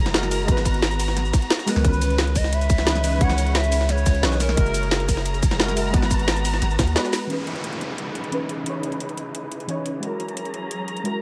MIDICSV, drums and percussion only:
0, 0, Header, 1, 2, 480
1, 0, Start_track
1, 0, Tempo, 340909
1, 679, Time_signature, 4, 2, 24, 8
1, 15795, End_track
2, 0, Start_track
2, 0, Title_t, "Drums"
2, 82, Note_on_c, 9, 38, 58
2, 82, Note_on_c, 9, 40, 39
2, 82, Note_on_c, 9, 42, 38
2, 200, Note_off_c, 9, 38, 0
2, 200, Note_off_c, 9, 42, 0
2, 200, Note_on_c, 9, 38, 122
2, 200, Note_on_c, 9, 42, 88
2, 201, Note_off_c, 9, 38, 0
2, 201, Note_off_c, 9, 42, 0
2, 201, Note_on_c, 9, 38, 127
2, 201, Note_on_c, 9, 42, 92
2, 223, Note_off_c, 9, 40, 0
2, 323, Note_off_c, 9, 42, 0
2, 323, Note_on_c, 9, 40, 48
2, 323, Note_on_c, 9, 42, 46
2, 323, Note_on_c, 9, 69, 27
2, 342, Note_off_c, 9, 38, 0
2, 440, Note_off_c, 9, 42, 0
2, 440, Note_on_c, 9, 42, 73
2, 441, Note_off_c, 9, 69, 0
2, 441, Note_on_c, 9, 46, 83
2, 441, Note_on_c, 9, 51, 73
2, 441, Note_on_c, 9, 69, 58
2, 463, Note_off_c, 9, 40, 0
2, 580, Note_off_c, 9, 42, 0
2, 582, Note_off_c, 9, 46, 0
2, 582, Note_off_c, 9, 51, 0
2, 582, Note_off_c, 9, 69, 0
2, 678, Note_on_c, 9, 36, 119
2, 680, Note_on_c, 9, 42, 92
2, 682, Note_off_c, 9, 42, 0
2, 682, Note_on_c, 9, 42, 94
2, 802, Note_on_c, 9, 38, 50
2, 805, Note_on_c, 9, 40, 37
2, 805, Note_on_c, 9, 69, 28
2, 819, Note_off_c, 9, 36, 0
2, 823, Note_off_c, 9, 42, 0
2, 918, Note_on_c, 9, 36, 69
2, 920, Note_on_c, 9, 42, 69
2, 923, Note_off_c, 9, 42, 0
2, 923, Note_off_c, 9, 69, 0
2, 923, Note_on_c, 9, 42, 61
2, 923, Note_on_c, 9, 51, 79
2, 923, Note_on_c, 9, 69, 58
2, 943, Note_off_c, 9, 38, 0
2, 946, Note_off_c, 9, 40, 0
2, 1045, Note_off_c, 9, 42, 0
2, 1045, Note_on_c, 9, 42, 37
2, 1059, Note_off_c, 9, 36, 0
2, 1063, Note_off_c, 9, 51, 0
2, 1063, Note_off_c, 9, 69, 0
2, 1161, Note_off_c, 9, 42, 0
2, 1161, Note_on_c, 9, 38, 127
2, 1161, Note_on_c, 9, 42, 88
2, 1284, Note_off_c, 9, 42, 0
2, 1284, Note_on_c, 9, 42, 36
2, 1284, Note_on_c, 9, 69, 27
2, 1302, Note_off_c, 9, 38, 0
2, 1401, Note_off_c, 9, 42, 0
2, 1401, Note_on_c, 9, 42, 70
2, 1403, Note_off_c, 9, 69, 0
2, 1403, Note_on_c, 9, 46, 87
2, 1403, Note_on_c, 9, 51, 77
2, 1403, Note_on_c, 9, 69, 59
2, 1522, Note_on_c, 9, 38, 45
2, 1542, Note_off_c, 9, 42, 0
2, 1543, Note_off_c, 9, 46, 0
2, 1543, Note_off_c, 9, 51, 0
2, 1543, Note_off_c, 9, 69, 0
2, 1641, Note_on_c, 9, 42, 90
2, 1642, Note_off_c, 9, 42, 0
2, 1642, Note_on_c, 9, 40, 38
2, 1642, Note_on_c, 9, 42, 91
2, 1663, Note_off_c, 9, 38, 0
2, 1763, Note_on_c, 9, 69, 26
2, 1783, Note_off_c, 9, 40, 0
2, 1783, Note_off_c, 9, 42, 0
2, 1879, Note_on_c, 9, 36, 112
2, 1879, Note_on_c, 9, 38, 44
2, 1879, Note_on_c, 9, 42, 69
2, 1881, Note_off_c, 9, 42, 0
2, 1881, Note_off_c, 9, 69, 0
2, 1881, Note_on_c, 9, 42, 64
2, 1881, Note_on_c, 9, 51, 76
2, 1881, Note_on_c, 9, 69, 60
2, 2002, Note_off_c, 9, 42, 0
2, 2002, Note_on_c, 9, 42, 38
2, 2019, Note_off_c, 9, 36, 0
2, 2020, Note_off_c, 9, 38, 0
2, 2022, Note_off_c, 9, 51, 0
2, 2022, Note_off_c, 9, 69, 0
2, 2118, Note_off_c, 9, 42, 0
2, 2118, Note_on_c, 9, 38, 119
2, 2118, Note_on_c, 9, 42, 89
2, 2119, Note_off_c, 9, 38, 0
2, 2119, Note_off_c, 9, 42, 0
2, 2119, Note_on_c, 9, 38, 123
2, 2119, Note_on_c, 9, 42, 90
2, 2240, Note_on_c, 9, 69, 27
2, 2241, Note_off_c, 9, 38, 0
2, 2241, Note_on_c, 9, 38, 57
2, 2259, Note_off_c, 9, 42, 0
2, 2359, Note_off_c, 9, 69, 0
2, 2359, Note_on_c, 9, 40, 46
2, 2359, Note_on_c, 9, 42, 70
2, 2359, Note_on_c, 9, 46, 87
2, 2359, Note_on_c, 9, 51, 77
2, 2359, Note_on_c, 9, 69, 59
2, 2381, Note_off_c, 9, 38, 0
2, 2479, Note_off_c, 9, 40, 0
2, 2479, Note_on_c, 9, 40, 53
2, 2499, Note_off_c, 9, 46, 0
2, 2499, Note_off_c, 9, 51, 0
2, 2499, Note_off_c, 9, 69, 0
2, 2500, Note_off_c, 9, 42, 0
2, 2598, Note_on_c, 9, 36, 116
2, 2598, Note_on_c, 9, 42, 94
2, 2599, Note_off_c, 9, 42, 0
2, 2599, Note_on_c, 9, 42, 92
2, 2620, Note_off_c, 9, 40, 0
2, 2720, Note_on_c, 9, 69, 29
2, 2739, Note_off_c, 9, 36, 0
2, 2739, Note_off_c, 9, 42, 0
2, 2837, Note_on_c, 9, 42, 70
2, 2840, Note_off_c, 9, 42, 0
2, 2840, Note_off_c, 9, 69, 0
2, 2840, Note_on_c, 9, 42, 63
2, 2840, Note_on_c, 9, 51, 81
2, 2840, Note_on_c, 9, 69, 62
2, 2961, Note_off_c, 9, 42, 0
2, 2961, Note_on_c, 9, 42, 35
2, 2980, Note_off_c, 9, 51, 0
2, 2980, Note_off_c, 9, 69, 0
2, 3075, Note_off_c, 9, 42, 0
2, 3075, Note_on_c, 9, 38, 115
2, 3075, Note_on_c, 9, 42, 89
2, 3079, Note_off_c, 9, 38, 0
2, 3079, Note_off_c, 9, 42, 0
2, 3079, Note_on_c, 9, 38, 123
2, 3079, Note_on_c, 9, 42, 92
2, 3200, Note_off_c, 9, 42, 0
2, 3200, Note_on_c, 9, 42, 37
2, 3219, Note_off_c, 9, 38, 0
2, 3316, Note_on_c, 9, 46, 89
2, 3316, Note_on_c, 9, 51, 80
2, 3316, Note_on_c, 9, 69, 63
2, 3317, Note_off_c, 9, 42, 0
2, 3317, Note_on_c, 9, 42, 68
2, 3318, Note_on_c, 9, 36, 61
2, 3439, Note_on_c, 9, 38, 53
2, 3457, Note_off_c, 9, 42, 0
2, 3457, Note_off_c, 9, 46, 0
2, 3457, Note_off_c, 9, 51, 0
2, 3457, Note_off_c, 9, 69, 0
2, 3459, Note_off_c, 9, 36, 0
2, 3556, Note_on_c, 9, 42, 95
2, 3558, Note_off_c, 9, 42, 0
2, 3558, Note_on_c, 9, 42, 92
2, 3580, Note_off_c, 9, 38, 0
2, 3679, Note_off_c, 9, 42, 0
2, 3679, Note_on_c, 9, 42, 46
2, 3679, Note_on_c, 9, 69, 28
2, 3798, Note_off_c, 9, 42, 0
2, 3798, Note_off_c, 9, 69, 0
2, 3798, Note_on_c, 9, 36, 107
2, 3798, Note_on_c, 9, 42, 69
2, 3798, Note_on_c, 9, 51, 77
2, 3798, Note_on_c, 9, 69, 62
2, 3918, Note_off_c, 9, 42, 0
2, 3918, Note_on_c, 9, 38, 59
2, 3918, Note_on_c, 9, 40, 35
2, 3918, Note_on_c, 9, 42, 37
2, 3938, Note_off_c, 9, 36, 0
2, 3938, Note_off_c, 9, 51, 0
2, 3938, Note_off_c, 9, 69, 0
2, 4036, Note_off_c, 9, 38, 0
2, 4036, Note_off_c, 9, 42, 0
2, 4036, Note_on_c, 9, 38, 116
2, 4036, Note_on_c, 9, 42, 87
2, 4058, Note_off_c, 9, 40, 0
2, 4159, Note_off_c, 9, 42, 0
2, 4159, Note_on_c, 9, 40, 46
2, 4159, Note_on_c, 9, 42, 45
2, 4159, Note_on_c, 9, 69, 27
2, 4177, Note_off_c, 9, 38, 0
2, 4276, Note_off_c, 9, 42, 0
2, 4276, Note_on_c, 9, 42, 72
2, 4279, Note_off_c, 9, 69, 0
2, 4279, Note_on_c, 9, 46, 87
2, 4279, Note_on_c, 9, 51, 78
2, 4279, Note_on_c, 9, 69, 60
2, 4299, Note_off_c, 9, 40, 0
2, 4417, Note_off_c, 9, 42, 0
2, 4419, Note_off_c, 9, 46, 0
2, 4419, Note_off_c, 9, 51, 0
2, 4419, Note_off_c, 9, 69, 0
2, 4518, Note_on_c, 9, 36, 120
2, 4518, Note_on_c, 9, 42, 96
2, 4519, Note_off_c, 9, 42, 0
2, 4519, Note_on_c, 9, 42, 92
2, 4639, Note_on_c, 9, 40, 35
2, 4639, Note_on_c, 9, 69, 30
2, 4641, Note_on_c, 9, 38, 51
2, 4659, Note_off_c, 9, 36, 0
2, 4660, Note_off_c, 9, 42, 0
2, 4758, Note_off_c, 9, 69, 0
2, 4758, Note_on_c, 9, 42, 69
2, 4758, Note_on_c, 9, 51, 80
2, 4758, Note_on_c, 9, 69, 64
2, 4759, Note_off_c, 9, 42, 0
2, 4759, Note_on_c, 9, 42, 70
2, 4780, Note_off_c, 9, 40, 0
2, 4782, Note_off_c, 9, 38, 0
2, 4879, Note_off_c, 9, 42, 0
2, 4879, Note_on_c, 9, 42, 38
2, 4899, Note_off_c, 9, 51, 0
2, 4899, Note_off_c, 9, 69, 0
2, 4997, Note_off_c, 9, 42, 0
2, 4997, Note_on_c, 9, 38, 117
2, 4997, Note_on_c, 9, 42, 97
2, 4998, Note_off_c, 9, 38, 0
2, 4998, Note_off_c, 9, 42, 0
2, 4998, Note_on_c, 9, 38, 126
2, 4998, Note_on_c, 9, 42, 93
2, 5121, Note_off_c, 9, 42, 0
2, 5121, Note_on_c, 9, 42, 37
2, 5121, Note_on_c, 9, 69, 29
2, 5139, Note_off_c, 9, 38, 0
2, 5238, Note_off_c, 9, 69, 0
2, 5238, Note_on_c, 9, 46, 83
2, 5238, Note_on_c, 9, 51, 80
2, 5238, Note_on_c, 9, 69, 66
2, 5241, Note_off_c, 9, 42, 0
2, 5241, Note_on_c, 9, 42, 70
2, 5362, Note_on_c, 9, 38, 46
2, 5378, Note_off_c, 9, 46, 0
2, 5378, Note_off_c, 9, 51, 0
2, 5378, Note_off_c, 9, 69, 0
2, 5381, Note_off_c, 9, 42, 0
2, 5477, Note_on_c, 9, 40, 36
2, 5477, Note_on_c, 9, 42, 98
2, 5479, Note_off_c, 9, 42, 0
2, 5479, Note_on_c, 9, 42, 87
2, 5503, Note_off_c, 9, 38, 0
2, 5597, Note_on_c, 9, 69, 29
2, 5617, Note_off_c, 9, 40, 0
2, 5619, Note_off_c, 9, 42, 0
2, 5716, Note_off_c, 9, 69, 0
2, 5716, Note_on_c, 9, 42, 66
2, 5716, Note_on_c, 9, 51, 80
2, 5716, Note_on_c, 9, 69, 62
2, 5719, Note_on_c, 9, 36, 101
2, 5720, Note_off_c, 9, 42, 0
2, 5720, Note_on_c, 9, 38, 47
2, 5720, Note_on_c, 9, 42, 68
2, 5839, Note_off_c, 9, 42, 0
2, 5839, Note_on_c, 9, 42, 39
2, 5857, Note_off_c, 9, 51, 0
2, 5857, Note_off_c, 9, 69, 0
2, 5859, Note_off_c, 9, 36, 0
2, 5861, Note_off_c, 9, 38, 0
2, 5958, Note_off_c, 9, 42, 0
2, 5958, Note_on_c, 9, 38, 121
2, 5958, Note_on_c, 9, 42, 96
2, 5959, Note_off_c, 9, 38, 0
2, 5959, Note_off_c, 9, 42, 0
2, 5959, Note_on_c, 9, 38, 120
2, 5959, Note_on_c, 9, 42, 89
2, 6080, Note_on_c, 9, 69, 29
2, 6082, Note_off_c, 9, 38, 0
2, 6082, Note_on_c, 9, 38, 62
2, 6100, Note_off_c, 9, 42, 0
2, 6198, Note_off_c, 9, 69, 0
2, 6198, Note_on_c, 9, 40, 45
2, 6198, Note_on_c, 9, 46, 80
2, 6198, Note_on_c, 9, 51, 82
2, 6198, Note_on_c, 9, 69, 65
2, 6199, Note_on_c, 9, 42, 72
2, 6223, Note_off_c, 9, 38, 0
2, 6321, Note_off_c, 9, 40, 0
2, 6321, Note_on_c, 9, 40, 53
2, 6339, Note_off_c, 9, 46, 0
2, 6339, Note_off_c, 9, 51, 0
2, 6339, Note_off_c, 9, 69, 0
2, 6340, Note_off_c, 9, 42, 0
2, 6439, Note_on_c, 9, 42, 99
2, 6440, Note_off_c, 9, 42, 0
2, 6440, Note_on_c, 9, 36, 113
2, 6440, Note_on_c, 9, 42, 90
2, 6462, Note_off_c, 9, 40, 0
2, 6561, Note_on_c, 9, 69, 30
2, 6581, Note_off_c, 9, 36, 0
2, 6581, Note_off_c, 9, 42, 0
2, 6679, Note_off_c, 9, 69, 0
2, 6679, Note_on_c, 9, 42, 69
2, 6679, Note_on_c, 9, 51, 78
2, 6679, Note_on_c, 9, 69, 67
2, 6801, Note_off_c, 9, 42, 0
2, 6801, Note_on_c, 9, 42, 41
2, 6820, Note_off_c, 9, 51, 0
2, 6820, Note_off_c, 9, 69, 0
2, 6918, Note_off_c, 9, 42, 0
2, 6918, Note_on_c, 9, 38, 116
2, 6918, Note_on_c, 9, 42, 91
2, 6920, Note_off_c, 9, 38, 0
2, 6920, Note_off_c, 9, 42, 0
2, 6920, Note_on_c, 9, 38, 114
2, 6920, Note_on_c, 9, 42, 97
2, 7042, Note_off_c, 9, 42, 0
2, 7042, Note_on_c, 9, 42, 39
2, 7060, Note_off_c, 9, 38, 0
2, 7160, Note_on_c, 9, 36, 58
2, 7161, Note_off_c, 9, 42, 0
2, 7161, Note_on_c, 9, 42, 70
2, 7162, Note_on_c, 9, 46, 78
2, 7162, Note_on_c, 9, 51, 78
2, 7162, Note_on_c, 9, 69, 65
2, 7280, Note_on_c, 9, 38, 54
2, 7301, Note_off_c, 9, 36, 0
2, 7301, Note_off_c, 9, 42, 0
2, 7303, Note_off_c, 9, 46, 0
2, 7303, Note_off_c, 9, 51, 0
2, 7303, Note_off_c, 9, 69, 0
2, 7399, Note_on_c, 9, 42, 94
2, 7401, Note_off_c, 9, 42, 0
2, 7401, Note_on_c, 9, 42, 99
2, 7421, Note_off_c, 9, 38, 0
2, 7522, Note_off_c, 9, 42, 0
2, 7522, Note_on_c, 9, 42, 46
2, 7524, Note_on_c, 9, 69, 28
2, 7639, Note_off_c, 9, 42, 0
2, 7639, Note_on_c, 9, 36, 99
2, 7639, Note_on_c, 9, 42, 69
2, 7642, Note_off_c, 9, 42, 0
2, 7642, Note_off_c, 9, 69, 0
2, 7642, Note_on_c, 9, 42, 70
2, 7642, Note_on_c, 9, 51, 73
2, 7642, Note_on_c, 9, 69, 61
2, 7760, Note_on_c, 9, 38, 57
2, 7762, Note_off_c, 9, 42, 0
2, 7762, Note_on_c, 9, 40, 38
2, 7762, Note_on_c, 9, 42, 41
2, 7780, Note_off_c, 9, 36, 0
2, 7783, Note_off_c, 9, 51, 0
2, 7783, Note_off_c, 9, 69, 0
2, 7879, Note_off_c, 9, 38, 0
2, 7879, Note_off_c, 9, 42, 0
2, 7879, Note_on_c, 9, 38, 113
2, 7879, Note_on_c, 9, 42, 91
2, 7881, Note_off_c, 9, 38, 0
2, 7881, Note_off_c, 9, 42, 0
2, 7881, Note_on_c, 9, 38, 120
2, 7881, Note_on_c, 9, 42, 96
2, 7903, Note_off_c, 9, 40, 0
2, 8002, Note_on_c, 9, 40, 48
2, 8002, Note_on_c, 9, 69, 29
2, 8003, Note_off_c, 9, 42, 0
2, 8003, Note_on_c, 9, 42, 47
2, 8022, Note_off_c, 9, 38, 0
2, 8121, Note_off_c, 9, 42, 0
2, 8121, Note_off_c, 9, 69, 0
2, 8121, Note_on_c, 9, 42, 74
2, 8121, Note_on_c, 9, 46, 78
2, 8121, Note_on_c, 9, 51, 78
2, 8121, Note_on_c, 9, 69, 64
2, 8143, Note_off_c, 9, 40, 0
2, 8262, Note_off_c, 9, 42, 0
2, 8262, Note_off_c, 9, 46, 0
2, 8262, Note_off_c, 9, 51, 0
2, 8262, Note_off_c, 9, 69, 0
2, 8359, Note_on_c, 9, 36, 115
2, 8360, Note_on_c, 9, 42, 105
2, 8362, Note_off_c, 9, 42, 0
2, 8362, Note_on_c, 9, 42, 92
2, 8482, Note_on_c, 9, 38, 50
2, 8482, Note_on_c, 9, 40, 38
2, 8482, Note_on_c, 9, 69, 29
2, 8500, Note_off_c, 9, 36, 0
2, 8503, Note_off_c, 9, 42, 0
2, 8599, Note_on_c, 9, 36, 62
2, 8600, Note_off_c, 9, 69, 0
2, 8600, Note_on_c, 9, 42, 72
2, 8600, Note_on_c, 9, 51, 76
2, 8600, Note_on_c, 9, 69, 64
2, 8602, Note_off_c, 9, 42, 0
2, 8602, Note_on_c, 9, 42, 69
2, 8623, Note_off_c, 9, 38, 0
2, 8623, Note_off_c, 9, 40, 0
2, 8721, Note_off_c, 9, 42, 0
2, 8721, Note_on_c, 9, 42, 41
2, 8739, Note_off_c, 9, 36, 0
2, 8741, Note_off_c, 9, 51, 0
2, 8741, Note_off_c, 9, 69, 0
2, 8838, Note_off_c, 9, 42, 0
2, 8838, Note_on_c, 9, 38, 120
2, 8838, Note_on_c, 9, 42, 102
2, 8840, Note_off_c, 9, 38, 0
2, 8840, Note_off_c, 9, 42, 0
2, 8840, Note_on_c, 9, 38, 125
2, 8840, Note_on_c, 9, 42, 90
2, 8961, Note_off_c, 9, 42, 0
2, 8961, Note_on_c, 9, 42, 39
2, 8961, Note_on_c, 9, 69, 28
2, 8981, Note_off_c, 9, 38, 0
2, 9080, Note_off_c, 9, 42, 0
2, 9080, Note_off_c, 9, 69, 0
2, 9080, Note_on_c, 9, 42, 67
2, 9080, Note_on_c, 9, 46, 81
2, 9080, Note_on_c, 9, 51, 76
2, 9080, Note_on_c, 9, 69, 67
2, 9202, Note_on_c, 9, 38, 44
2, 9221, Note_off_c, 9, 42, 0
2, 9221, Note_off_c, 9, 46, 0
2, 9221, Note_off_c, 9, 51, 0
2, 9221, Note_off_c, 9, 69, 0
2, 9318, Note_on_c, 9, 40, 39
2, 9318, Note_on_c, 9, 42, 101
2, 9319, Note_off_c, 9, 42, 0
2, 9319, Note_on_c, 9, 42, 93
2, 9343, Note_off_c, 9, 38, 0
2, 9439, Note_on_c, 9, 69, 27
2, 9459, Note_off_c, 9, 40, 0
2, 9460, Note_off_c, 9, 42, 0
2, 9558, Note_on_c, 9, 36, 100
2, 9559, Note_off_c, 9, 69, 0
2, 9559, Note_on_c, 9, 38, 106
2, 9559, Note_on_c, 9, 42, 69
2, 9559, Note_on_c, 9, 51, 75
2, 9559, Note_on_c, 9, 69, 61
2, 9680, Note_off_c, 9, 42, 0
2, 9680, Note_on_c, 9, 42, 41
2, 9699, Note_off_c, 9, 36, 0
2, 9699, Note_off_c, 9, 38, 0
2, 9700, Note_off_c, 9, 51, 0
2, 9700, Note_off_c, 9, 69, 0
2, 9797, Note_off_c, 9, 42, 0
2, 9797, Note_on_c, 9, 38, 119
2, 9797, Note_on_c, 9, 42, 103
2, 9921, Note_on_c, 9, 69, 28
2, 9922, Note_off_c, 9, 38, 0
2, 9922, Note_on_c, 9, 38, 61
2, 9938, Note_off_c, 9, 42, 0
2, 10039, Note_off_c, 9, 38, 0
2, 10039, Note_off_c, 9, 69, 0
2, 10039, Note_on_c, 9, 38, 91
2, 10039, Note_on_c, 9, 42, 70
2, 10039, Note_on_c, 9, 46, 79
2, 10039, Note_on_c, 9, 51, 73
2, 10039, Note_on_c, 9, 69, 65
2, 10180, Note_off_c, 9, 38, 0
2, 10180, Note_off_c, 9, 42, 0
2, 10180, Note_off_c, 9, 46, 0
2, 10180, Note_off_c, 9, 51, 0
2, 10180, Note_off_c, 9, 69, 0
2, 10279, Note_on_c, 9, 42, 86
2, 10420, Note_off_c, 9, 42, 0
2, 10519, Note_on_c, 9, 42, 61
2, 10640, Note_off_c, 9, 42, 0
2, 10640, Note_on_c, 9, 42, 34
2, 10756, Note_off_c, 9, 42, 0
2, 10756, Note_on_c, 9, 42, 85
2, 10878, Note_off_c, 9, 42, 0
2, 10878, Note_on_c, 9, 42, 34
2, 10999, Note_off_c, 9, 42, 0
2, 10999, Note_on_c, 9, 42, 64
2, 11139, Note_off_c, 9, 42, 0
2, 11239, Note_on_c, 9, 42, 88
2, 11380, Note_off_c, 9, 42, 0
2, 11478, Note_on_c, 9, 42, 59
2, 11600, Note_off_c, 9, 42, 0
2, 11600, Note_on_c, 9, 42, 36
2, 11719, Note_off_c, 9, 42, 0
2, 11719, Note_on_c, 9, 42, 89
2, 11859, Note_off_c, 9, 42, 0
2, 11958, Note_on_c, 9, 42, 59
2, 12099, Note_off_c, 9, 42, 0
2, 12195, Note_on_c, 9, 42, 87
2, 12336, Note_off_c, 9, 42, 0
2, 12437, Note_on_c, 9, 42, 60
2, 12560, Note_off_c, 9, 42, 0
2, 12560, Note_on_c, 9, 42, 32
2, 12678, Note_off_c, 9, 42, 0
2, 12678, Note_on_c, 9, 42, 82
2, 12799, Note_off_c, 9, 42, 0
2, 12799, Note_on_c, 9, 42, 32
2, 12918, Note_off_c, 9, 42, 0
2, 12918, Note_on_c, 9, 42, 62
2, 13058, Note_off_c, 9, 42, 0
2, 13160, Note_on_c, 9, 42, 83
2, 13300, Note_off_c, 9, 42, 0
2, 13398, Note_on_c, 9, 42, 60
2, 13520, Note_off_c, 9, 42, 0
2, 13520, Note_on_c, 9, 42, 34
2, 13638, Note_off_c, 9, 42, 0
2, 13638, Note_on_c, 9, 42, 83
2, 13779, Note_off_c, 9, 42, 0
2, 13878, Note_on_c, 9, 42, 59
2, 14018, Note_off_c, 9, 42, 0
2, 14119, Note_on_c, 9, 42, 85
2, 14260, Note_off_c, 9, 42, 0
2, 14359, Note_on_c, 9, 42, 56
2, 14481, Note_off_c, 9, 42, 0
2, 14481, Note_on_c, 9, 42, 33
2, 14599, Note_off_c, 9, 42, 0
2, 14599, Note_on_c, 9, 42, 79
2, 14719, Note_off_c, 9, 42, 0
2, 14719, Note_on_c, 9, 42, 32
2, 14838, Note_off_c, 9, 42, 0
2, 14838, Note_on_c, 9, 42, 59
2, 14979, Note_off_c, 9, 42, 0
2, 15079, Note_on_c, 9, 42, 86
2, 15220, Note_off_c, 9, 42, 0
2, 15318, Note_on_c, 9, 42, 54
2, 15440, Note_off_c, 9, 42, 0
2, 15440, Note_on_c, 9, 42, 33
2, 15558, Note_off_c, 9, 42, 0
2, 15558, Note_on_c, 9, 42, 80
2, 15699, Note_off_c, 9, 42, 0
2, 15795, End_track
0, 0, End_of_file